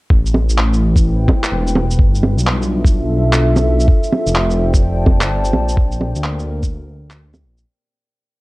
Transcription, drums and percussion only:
0.10 kick
0.26 shaker
0.34 low bongo
0.49 shaker
0.58 clap
0.73 shaker
0.96 kick, shaker
1.28 kick, low bongo
1.44 clap, shaker
1.67 shaker
1.75 low bongo
1.91 shaker
1.99 kick
2.15 shaker
2.23 low bongo
2.38 shaker
2.47 clap
2.62 shaker
2.85 kick, shaker
3.33 clap, shaker
3.56 low bongo, shaker
3.80 shaker
3.88 kick
4.03 shaker
4.12 low bongo
4.27 shaker
4.35 clap
4.50 shaker
4.74 kick, shaker
5.06 kick, low bongo
5.21 clap, shaker
5.45 shaker
5.53 low bongo
5.68 shaker
5.77 kick
5.92 shaker
6.01 low bongo
6.15 shaker
6.24 clap
6.39 shaker
6.63 kick, shaker
7.10 clap, shaker
7.34 low bongo, shaker
7.57 shaker

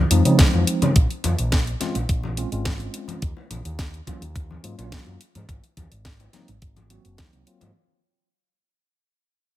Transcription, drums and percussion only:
0.11 closed hi-hat, high bongo
0.25 closed hi-hat
0.39 kick, snare, closed hi-hat, high conga
0.54 high bongo
0.67 closed hi-hat
0.82 closed hi-hat, high bongo, high conga
0.96 kick, closed hi-hat
1.10 closed hi-hat
1.24 closed hi-hat, high bongo, high conga
1.39 closed hi-hat
1.52 kick, snare, closed hi-hat, high bongo
1.67 closed hi-hat
1.80 snare, closed hi-hat, high conga
1.95 closed hi-hat, high bongo
2.09 kick, closed hi-hat
2.24 high bongo, high conga
2.37 closed hi-hat
2.52 closed hi-hat
2.65 kick, snare, closed hi-hat, high bongo, high conga
2.80 closed hi-hat
2.94 closed hi-hat, high bongo
3.08 closed hi-hat, high conga
3.22 kick, closed hi-hat
3.37 high bongo
3.50 closed hi-hat, high conga
3.65 closed hi-hat, high bongo
3.79 kick, snare, closed hi-hat
3.94 closed hi-hat
4.07 kick, closed hi-hat, high bongo, high conga
4.22 closed hi-hat
4.35 kick, closed hi-hat, high bongo
4.51 high conga
4.64 closed hi-hat
4.78 closed hi-hat, high bongo
4.92 kick, snare, closed hi-hat, high conga
5.06 high bongo
5.21 closed hi-hat
5.35 closed hi-hat, high conga
5.49 kick, closed hi-hat, high bongo
5.64 closed hi-hat
5.77 kick, closed hi-hat, high bongo, high conga
5.92 closed hi-hat
6.05 kick, snare, closed hi-hat
6.20 closed hi-hat, high bongo
6.33 snare, closed hi-hat, high conga
6.48 closed hi-hat, high bongo
6.62 kick, closed hi-hat
6.76 closed hi-hat, high conga
6.90 closed hi-hat, high bongo
7.05 closed hi-hat
7.17 kick, snare, closed hi-hat, high bongo, high conga
7.33 closed hi-hat
7.47 closed hi-hat
7.61 closed hi-hat, high bongo, high conga

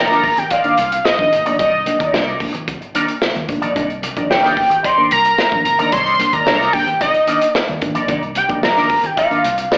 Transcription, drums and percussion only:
0.11 snare
0.24 kick, open hi-hat, muted conga
0.37 closed hi-hat, low conga
0.50 kick, closed hi-hat, muted conga
0.64 closed hi-hat
0.77 closed hi-hat
0.92 closed hi-hat
1.05 snare, muted conga
1.19 kick, high conga
1.32 closed hi-hat, muted conga, low conga
1.46 closed hi-hat
1.59 kick, closed hi-hat, muted conga, low conga
1.86 closed hi-hat, muted conga, high conga
2.00 kick, closed hi-hat
2.14 snare, muted conga, high conga
2.40 kick, open hi-hat, muted conga
2.55 closed hi-hat, low conga
2.68 kick, closed hi-hat, muted conga
2.82 closed hi-hat
2.95 closed hi-hat, muted conga, high conga
3.08 closed hi-hat
3.22 snare, muted conga
3.35 closed hi-hat, high conga
3.48 kick, closed hi-hat, muted conga, low conga
3.62 closed hi-hat
3.76 kick, closed hi-hat, muted conga, low conga
3.90 closed hi-hat
4.02 closed hi-hat, muted conga, high conga
4.17 kick, closed hi-hat
4.29 snare, muted conga, high conga
4.44 snare, closed hi-hat
4.57 kick, open hi-hat, muted conga
4.70 closed hi-hat, low conga
4.84 kick, closed hi-hat, muted conga
5.11 closed hi-hat
5.25 closed hi-hat
5.38 snare, muted conga
5.52 kick, closed hi-hat, high conga
5.65 closed hi-hat, muted conga, low conga
5.79 closed hi-hat
5.92 kick, closed hi-hat, muted conga, low conga
6.06 closed hi-hat
6.19 closed hi-hat, high conga
6.33 kick, closed hi-hat
6.46 snare, muted conga, high conga
6.61 snare
6.73 kick, open hi-hat
6.87 closed hi-hat, low conga
7.01 kick, closed hi-hat, muted conga
7.14 closed hi-hat
7.27 closed hi-hat
7.41 closed hi-hat
7.55 snare, muted conga
7.68 closed hi-hat, high conga
7.81 kick, closed hi-hat, muted conga, low conga
7.95 closed hi-hat
8.08 kick, closed hi-hat, muted conga, low conga
8.22 closed hi-hat
8.35 closed hi-hat, muted conga, high conga
8.49 kick, closed hi-hat
8.63 snare, muted conga, high conga
8.77 snare
8.89 kick, open hi-hat
9.04 closed hi-hat, low conga
9.17 kick, closed hi-hat, muted conga
9.31 closed hi-hat
9.44 closed hi-hat, muted conga
9.58 closed hi-hat
9.72 snare, muted conga

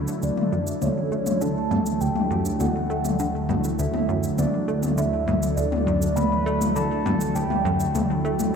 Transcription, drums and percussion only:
0.08 cabasa
0.23 cabasa
0.37 high tom
0.67 cabasa
0.82 high tom, cabasa
1.26 high tom, cabasa
1.41 cabasa
1.71 high tom
1.86 cabasa
2.01 cabasa
2.16 high tom
2.45 cabasa
2.60 high tom, cabasa
3.05 high tom, cabasa
3.19 cabasa
3.49 high tom
3.64 cabasa
3.79 cabasa
3.94 high tom
4.23 cabasa
4.38 high tom, cabasa
4.83 high tom, cabasa
4.98 cabasa
5.28 high tom
5.43 cabasa
5.57 cabasa
5.72 high tom
6.02 cabasa
6.17 high tom, cabasa
6.61 high tom, cabasa
6.76 cabasa
7.06 high tom
7.21 cabasa
7.36 cabasa
7.50 high tom
7.80 cabasa
7.95 high tom, cabasa
8.39 high tom, cabasa

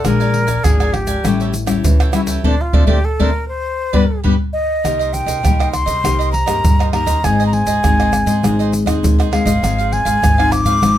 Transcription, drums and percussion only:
0.05 pandeiro, tamborim, shaker, surdo
0.21 pandeiro, shaker
0.34 pandeiro
0.48 pandeiro, shaker, surdo
0.64 pandeiro, tamborim, shaker, surdo
0.80 pandeiro, tamborim, shaker
0.94 pandeiro, tamborim, surdo
1.07 pandeiro, shaker, surdo
1.25 pandeiro, tamborim, shaker, surdo
1.40 pandeiro, shaker
1.54 pandeiro, shaker
1.67 pandeiro, tamborim, shaker, surdo
1.84 pandeiro, shaker, surdo
2.00 pandeiro, tamborim, shaker
2.13 pandeiro, tamborim, shaker
2.27 pandeiro, shaker, surdo
2.44 surdo
2.73 surdo
2.87 surdo
3.20 surdo
3.94 surdo
4.25 surdo
4.85 pandeiro, tamborim, shaker, surdo
5.01 pandeiro, shaker
5.14 pandeiro, shaker
5.28 pandeiro, shaker, surdo
5.45 pandeiro, tamborim, shaker, surdo
5.60 pandeiro, tamborim, shaker
5.74 pandeiro, tamborim, shaker
5.88 pandeiro, shaker, surdo
6.05 pandeiro, tamborim, shaker, surdo
6.21 pandeiro, shaker
6.34 pandeiro
6.48 pandeiro, tamborim, shaker, surdo
6.65 pandeiro, shaker, surdo
6.80 pandeiro, tamborim, shaker
6.93 pandeiro, tamborim
7.07 pandeiro, shaker, surdo
7.24 pandeiro, tamborim, shaker, surdo
7.40 pandeiro, shaker
7.53 pandeiro
7.67 pandeiro, shaker, surdo
7.84 pandeiro, tamborim, shaker, surdo
8.00 pandeiro, tamborim, shaker
8.13 pandeiro, tamborim, shaker
8.27 pandeiro, shaker, surdo
8.44 pandeiro, tamborim, shaker, surdo
8.60 pandeiro, shaker
8.73 pandeiro, shaker
8.87 pandeiro, tamborim, shaker, surdo
9.04 pandeiro, shaker, surdo
9.20 pandeiro, tamborim, shaker
9.33 pandeiro, tamborim
9.47 pandeiro, shaker, surdo
9.64 pandeiro, tamborim, shaker, surdo
9.79 pandeiro, shaker
9.93 pandeiro
10.06 pandeiro, shaker, surdo
10.24 pandeiro, tamborim, shaker, surdo
10.40 pandeiro, tamborim, shaker
10.52 pandeiro, tamborim, shaker
10.66 pandeiro, shaker, surdo
10.83 pandeiro, tamborim, shaker, surdo

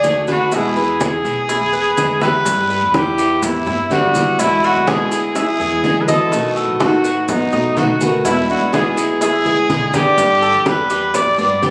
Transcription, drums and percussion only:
0.04 high bongo, low bongo, high conga, short guiro, maracas
0.27 high bongo, high conga, short guiro, maracas
0.52 high bongo, high conga, long guiro, maracas
0.76 high conga, maracas
1.00 high bongo, high conga, short guiro, maracas
1.25 high bongo, short guiro, maracas
1.49 high bongo, high conga, long guiro, maracas
1.73 high bongo, high conga, maracas
1.97 high bongo, low bongo, high conga, short guiro, maracas
2.21 high bongo, high conga, short guiro, maracas
2.45 high bongo, high conga, long guiro, maracas
2.70 high bongo, high conga, maracas
2.94 high bongo, high conga, short guiro, maracas
3.18 high bongo, high conga, short guiro, maracas
3.42 high bongo, high conga, low conga, long guiro, maracas
3.66 high bongo, high conga, low conga, maracas
3.91 high bongo, low bongo, high conga, short guiro, maracas
4.15 high conga, short guiro, maracas
4.39 high bongo, high conga, long guiro, maracas
4.63 high bongo, high conga, maracas
4.87 high bongo, high conga, short guiro, maracas
5.11 high bongo, high conga, short guiro, maracas
5.35 high bongo, high conga, long guiro, maracas
5.60 high bongo, high conga, maracas
5.84 high bongo, low bongo, high conga, short guiro, maracas
6.08 high conga, short guiro, maracas
6.32 high bongo, high conga, long guiro, maracas
6.56 high bongo, high conga, maracas
6.80 high bongo, high conga, short guiro, maracas
7.04 high bongo, high conga, short guiro, maracas
7.28 high bongo, high conga, low conga, long guiro, maracas
7.52 high bongo, high conga, low conga, maracas
7.76 high bongo, low bongo, high conga, short guiro, maracas
8.01 high conga, short guiro, maracas
8.25 high bongo, high conga, long guiro, maracas
8.49 high bongo, high conga, maracas
8.73 high bongo, high conga, short guiro, maracas
8.97 high bongo, high conga, short guiro, maracas
9.21 high bongo, high conga, long guiro, maracas
9.45 high bongo, high conga, maracas
9.70 high bongo, low bongo, high conga, short guiro, maracas
9.94 high bongo, high conga, short guiro, maracas
10.18 high bongo, high conga, long guiro, maracas
10.42 high bongo, high conga, maracas
10.66 high bongo, high conga, short guiro, maracas
10.90 high bongo, high conga, short guiro, maracas
11.14 high bongo, high conga, low conga, long guiro, maracas
11.38 high bongo, high conga, maracas
11.62 high bongo, low bongo, high conga, short guiro, maracas

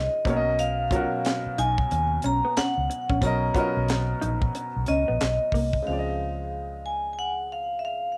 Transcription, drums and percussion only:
0.25 kick, closed hi-hat
0.59 closed hi-hat
0.91 kick, closed hi-hat
1.25 snare, clap, closed hi-hat
1.58 closed hi-hat
1.78 kick
1.91 closed hi-hat
2.22 closed hi-hat
2.57 snare, clap, closed hi-hat
2.91 closed hi-hat
3.10 kick
3.22 kick, closed hi-hat
3.55 kick, closed hi-hat
3.88 snare, clap, closed hi-hat
4.22 closed hi-hat
4.42 kick
4.55 closed hi-hat
4.86 closed hi-hat
5.20 snare, clap, closed hi-hat
5.52 kick, open hi-hat
5.73 kick

